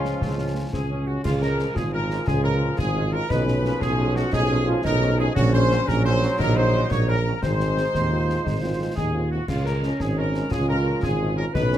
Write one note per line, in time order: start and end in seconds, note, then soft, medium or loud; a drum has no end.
0.00 0.15 C#2 medium
0.00 0.68 F3 loud
0.00 1.07 F3 loud
0.00 1.03 G#3 medium
0.00 0.19 C#4 loud
0.00 1.07 C#4 medium
0.00 0.56 F4 loud
0.00 0.68 F4 loud
0.00 0.44 F5 loud
0.05 snare medium
0.21 0.67 C#2 medium
0.21 0.39 C4 loud
0.21 concert bass drum medium
0.21 snare medium
0.39 0.73 C#4 medium
0.71 1.18 C#2 medium
0.71 0.80 C4 medium
0.71 1.05 G#4 medium
0.71 1.04 G#5 medium
0.71 concert bass drum medium
0.71 snare medium
0.91 1.22 C#4 medium
1.06 1.24 F#4 medium
1.06 1.23 F#4 medium
1.06 1.12 F#5 medium
1.24 1.67 C#2 loud
1.24 3.27 F3 loud
1.24 3.27 G#3 loud
1.24 1.40 F4 loud
1.24 1.32 F4 loud
1.24 1.76 G#4 loud
1.24 1.40 F5 loud
1.24 concert bass drum loud
1.24 snare medium
1.24 crash medium
1.41 1.47 F3 medium
1.41 1.47 G#3 medium
1.41 1.47 C#4 medium
1.41 1.73 A#4 loud
1.41 1.75 A#5 medium
1.41 snare medium
1.59 1.65 F3 medium
1.59 1.65 G#3 medium
1.59 1.65 C#4 medium
1.59 snare medium
1.74 2.19 G#1 medium
1.74 3.29 F4 medium
1.74 1.93 G#4 loud
1.74 1.84 G#4 medium
1.74 1.92 G#5 medium
1.74 concert bass drum medium
1.74 snare medium
1.93 1.99 F3 medium
1.93 1.99 G#3 medium
1.93 1.99 C#4 medium
1.93 2.25 A#4 medium
1.93 2.25 A#4 loud
1.93 2.25 A#5 medium
2.10 2.16 F3 medium
2.10 2.16 G#3 medium
2.10 2.17 C#4 medium
2.10 snare medium
2.25 2.70 C#2 loud
2.25 2.44 G#4 loud
2.25 2.42 G#5 loud
2.25 concert bass drum loud
2.25 snare medium
2.43 2.50 F3 medium
2.43 2.50 G#3 medium
2.43 2.50 C#4 medium
2.43 2.78 A#4 medium
2.43 2.76 A#4 loud
2.43 2.76 A#5 loud
2.61 2.67 F3 medium
2.61 2.67 G#3 medium
2.61 2.67 C#4 medium
2.77 3.22 G#1 loud
2.77 3.12 G#4 loud
2.77 3.11 G#4 loud
2.77 3.10 G#5 loud
2.77 concert bass drum medium
2.77 snare medium
2.95 3.01 F3 medium
2.95 3.01 G#3 medium
2.95 3.01 C#4 medium
3.11 3.19 F3 medium
3.11 3.18 G#3 medium
3.11 3.18 C#4 medium
3.11 3.29 A#4 loud
3.11 3.30 A#4 loud
3.11 3.29 A#5 loud
3.29 3.73 B1 loud
3.29 5.33 F3 loud
3.29 5.33 C#4 loud
3.29 3.46 D#4 loud
3.29 3.77 B4 loud
3.29 3.81 B4 loud
3.29 3.82 B5 loud
3.29 concert bass drum loud
3.29 snare medium
3.29 crash soft
3.46 3.53 F3 medium
3.46 3.53 G#3 medium
3.46 3.65 C#4 loud
3.46 3.53 C#4 medium
3.46 snare medium
3.63 3.71 F3 medium
3.63 3.70 G#3 medium
3.63 3.82 A#3 medium
3.63 3.71 C#4 medium
3.63 snare medium
3.80 4.25 B1 loud
3.80 4.32 B3 medium
3.80 4.13 G#4 loud
3.80 4.16 G#4 loud
3.80 4.16 G#5 loud
3.80 concert bass drum medium
3.80 snare medium
3.99 4.05 F3 medium
3.99 4.05 G#3 medium
3.99 4.05 C#4 medium
4.15 4.22 F3 medium
4.15 4.22 G#3 medium
4.15 4.22 C#4 medium
4.15 4.32 F#4 loud
4.15 4.33 F#4 loud
4.15 4.33 F#5 loud
4.15 snare medium
4.33 4.76 B1 loud
4.33 4.41 D#4 loud
4.33 4.84 G#4 loud
4.33 4.70 G#4 loud
4.33 4.81 G#5 loud
4.33 concert bass drum loud
4.33 snare medium
4.50 4.57 F3 medium
4.50 4.57 G#3 medium
4.50 4.66 C#4 loud
4.50 4.56 C#4 medium
4.67 4.74 F3 medium
4.67 4.74 G#3 medium
4.67 4.74 C#4 loud
4.67 4.83 F4 loud
4.83 5.28 B1 loud
4.83 5.32 D#4 loud
4.83 5.16 A#4 loud
4.83 5.17 A#5 loud
4.83 concert bass drum medium
4.83 snare medium
5.02 5.08 F3 medium
5.02 5.08 G#3 loud
5.02 5.08 C#4 loud
5.19 5.25 F3 loud
5.19 5.25 G#3 loud
5.19 5.25 C#4 medium
5.19 5.36 G#4 loud
5.19 5.35 G#4 loud
5.19 5.26 G#5 loud
5.34 5.79 A#1 loud
5.34 7.25 F#3 loud
5.34 6.35 C#4 loud
5.34 5.84 C#4 loud
5.34 5.42 F#4 loud
5.34 5.52 F#4 loud
5.34 5.42 F#5 loud
5.34 concert bass drum loud
5.34 snare loud
5.34 crash soft
5.53 5.60 F#3 loud
5.53 5.60 C#4 loud
5.53 5.85 C5 loud
5.53 5.85 C6 loud
5.53 snare medium
5.71 5.77 F#3 loud
5.71 5.77 C#4 loud
5.71 snare medium
5.87 6.28 A#1 loud
5.87 6.41 C#4 loud
5.87 6.05 A#4 loud
5.87 5.94 A#5 loud
5.87 concert bass drum medium
5.87 snare medium
6.05 6.12 F#3 medium
6.05 6.11 C#4 loud
6.05 6.37 C5 loud
6.05 6.40 C5 loud
6.05 6.37 C6 loud
6.22 6.29 F#3 loud
6.22 6.29 C#4 medium
6.22 snare medium
6.38 6.83 A#1 loud
6.38 6.90 D#4 loud
6.38 7.25 D#4 loud
6.38 6.46 A#4 loud
6.38 6.56 A#4 loud
6.38 6.56 A#5 loud
6.38 concert bass drum loud
6.38 snare medium
6.56 6.63 D#3 medium
6.56 6.63 F#3 medium
6.56 6.63 C#4 medium
6.56 6.91 C5 loud
6.56 6.89 C5 loud
6.56 6.91 C6 loud
6.74 6.80 D#3 medium
6.74 6.80 F#3 medium
6.74 6.80 C#4 medium
6.91 7.34 A#1 loud
6.91 7.43 A#3 medium
6.91 7.08 C#5 loud
6.91 7.07 C#5 loud
6.91 7.07 C#6 loud
6.91 concert bass drum medium
6.91 snare medium
7.07 7.14 D#3 medium
7.07 7.14 F#3 medium
7.07 7.14 C#4 medium
7.07 7.40 A#4 loud
7.07 7.42 A#4 loud
7.07 7.39 A#5 loud
7.25 7.32 D#3 medium
7.25 7.32 F#3 medium
7.25 7.32 C#4 medium
7.42 7.85 G#1 loud
7.42 9.27 G#3 loud
7.42 7.79 C4 medium
7.42 9.27 D#4 loud
7.42 8.93 C5 loud
7.42 8.67 C6 loud
7.42 concert bass drum loud
7.42 snare medium
7.42 crash soft
7.60 7.66 D#3 medium
7.60 7.66 G#3 medium
7.60 7.66 C4 medium
7.60 snare medium
7.77 7.83 D#3 medium
7.77 7.83 G#3 medium
7.77 7.83 C4 medium
7.77 snare medium
7.93 8.37 D#2 medium
7.93 8.12 C4 loud
7.93 concert bass drum medium
7.93 snare medium
8.10 8.17 D#3 medium
8.10 8.17 G#3 medium
8.10 8.17 C4 medium
8.10 8.46 F4 loud
8.29 8.35 D#3 medium
8.29 8.35 G#3 medium
8.29 8.35 C4 medium
8.29 snare medium
8.45 8.88 G#1 medium
8.45 8.63 D#4 medium
8.45 concert bass drum medium
8.45 snare medium
8.62 8.69 D#3 medium
8.62 8.69 G#3 medium
8.62 8.69 C4 medium
8.62 8.97 F4 loud
8.79 8.86 D#3 medium
8.79 8.86 G#3 medium
8.79 8.86 C4 medium
8.95 9.40 D#2 medium
8.95 9.14 D#4 medium
8.95 9.28 G#4 loud
8.95 9.29 G#4 medium
8.95 9.29 G#5 medium
8.95 concert bass drum medium
8.95 snare medium
9.14 9.20 D#3 medium
9.14 9.20 G#3 medium
9.14 9.20 C4 medium
9.14 9.46 F4 medium
9.30 9.38 D#3 medium
9.30 9.38 G#3 medium
9.30 9.38 C4 medium
9.30 9.46 F#4 medium
9.30 9.47 F#4 medium
9.30 9.47 F#5 medium
9.47 9.91 C#2 medium
9.47 11.51 G#3 medium
9.47 10.48 C#4 loud
9.47 11.51 C#4 medium
9.47 9.65 F4 loud
9.47 9.66 F4 medium
9.47 9.64 F5 loud
9.47 concert bass drum medium
9.47 snare medium
9.47 crash medium
9.65 9.72 F3 medium
9.65 9.72 G#3 medium
9.65 9.72 C#4 medium
9.65 9.97 A#4 loud
9.65 10.00 A#4 loud
9.65 9.97 A#5 medium
9.65 snare medium
9.83 9.89 F3 medium
9.83 9.89 G#3 medium
9.83 9.89 C#4 medium
9.83 snare medium
10.00 10.43 G#1 medium
10.00 10.16 G#4 medium
10.00 10.17 G#4 loud
10.00 10.17 G#5 loud
10.00 concert bass drum medium
10.00 snare medium
10.17 10.24 F3 medium
10.17 10.23 G#3 medium
10.17 10.24 C#4 medium
10.17 10.52 A#4 loud
10.17 10.49 A#4 loud
10.17 10.49 A#5 loud
10.34 10.41 F3 medium
10.34 10.41 G#3 medium
10.34 10.41 C#4 medium
10.34 snare medium
10.51 10.95 C#2 loud
10.51 11.51 F4 loud
10.51 10.60 G#4 loud
10.51 10.68 G#4 loud
10.51 10.69 G#5 loud
10.51 concert bass drum loud
10.51 snare loud
10.68 10.75 F3 medium
10.68 10.75 G#3 medium
10.68 10.75 C#4 medium
10.68 11.00 A#4 loud
10.68 11.01 A#4 loud
10.68 11.01 A#5 loud
10.86 10.93 F3 medium
10.86 10.93 G#3 medium
10.86 10.92 C#4 medium
11.03 11.46 G#1 medium
11.03 11.35 G#4 loud
11.03 11.37 G#4 loud
11.03 11.36 G#5 loud
11.03 concert bass drum medium
11.03 snare medium
11.21 11.27 F3 medium
11.21 11.27 G#3 medium
11.21 11.27 C#4 medium
11.37 11.44 F3 medium
11.37 11.44 G#3 medium
11.37 11.44 C#4 medium
11.37 11.45 A#4 loud
11.37 11.53 A#4 loud
11.37 11.55 A#5 loud
11.53 11.78 B1 loud
11.53 11.78 F3 loud
11.53 11.78 C#4 loud
11.53 11.62 D#4 loud
11.53 11.78 B4 loud
11.53 11.78 B5 loud
11.53 concert bass drum loud
11.53 snare medium
11.53 crash soft
11.72 11.78 F3 medium
11.72 11.78 G#3 medium
11.72 11.78 C#4 medium
11.72 11.78 C#4 loud
11.72 snare medium